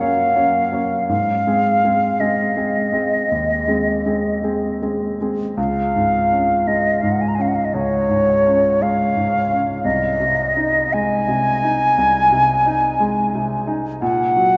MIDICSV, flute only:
0, 0, Header, 1, 2, 480
1, 0, Start_track
1, 0, Key_signature, -5, "major"
1, 0, Tempo, 736196
1, 715, Time_signature, 12, 3, 24, 8
1, 2164, Tempo, 751880
1, 3604, Tempo, 722892
1, 5524, Tempo, 689655
1, 6484, Tempo, 722892
1, 7444, Tempo, 681818
1, 9752, End_track
2, 0, Start_track
2, 0, Title_t, "Flute"
2, 0, Program_c, 0, 73
2, 5, Note_on_c, 0, 77, 69
2, 704, Note_off_c, 0, 77, 0
2, 708, Note_on_c, 0, 77, 67
2, 1436, Note_on_c, 0, 75, 50
2, 1446, Note_off_c, 0, 77, 0
2, 2874, Note_off_c, 0, 75, 0
2, 3606, Note_on_c, 0, 77, 60
2, 4334, Note_on_c, 0, 75, 62
2, 4344, Note_off_c, 0, 77, 0
2, 4552, Note_on_c, 0, 77, 50
2, 4562, Note_off_c, 0, 75, 0
2, 4629, Note_on_c, 0, 78, 47
2, 4639, Note_off_c, 0, 77, 0
2, 4691, Note_on_c, 0, 80, 46
2, 4701, Note_off_c, 0, 78, 0
2, 4738, Note_on_c, 0, 82, 49
2, 4748, Note_off_c, 0, 80, 0
2, 4783, Note_on_c, 0, 80, 45
2, 4793, Note_off_c, 0, 82, 0
2, 4826, Note_on_c, 0, 77, 43
2, 4836, Note_off_c, 0, 80, 0
2, 4871, Note_on_c, 0, 78, 47
2, 4881, Note_off_c, 0, 77, 0
2, 4920, Note_on_c, 0, 77, 48
2, 4930, Note_off_c, 0, 78, 0
2, 4981, Note_on_c, 0, 75, 44
2, 4991, Note_off_c, 0, 77, 0
2, 5040, Note_on_c, 0, 73, 66
2, 5050, Note_off_c, 0, 75, 0
2, 5771, Note_on_c, 0, 77, 69
2, 5782, Note_off_c, 0, 73, 0
2, 6474, Note_off_c, 0, 77, 0
2, 6478, Note_on_c, 0, 75, 63
2, 7205, Note_on_c, 0, 80, 81
2, 7215, Note_off_c, 0, 75, 0
2, 9174, Note_off_c, 0, 80, 0
2, 9364, Note_on_c, 0, 78, 80
2, 9752, Note_off_c, 0, 78, 0
2, 9752, End_track
0, 0, End_of_file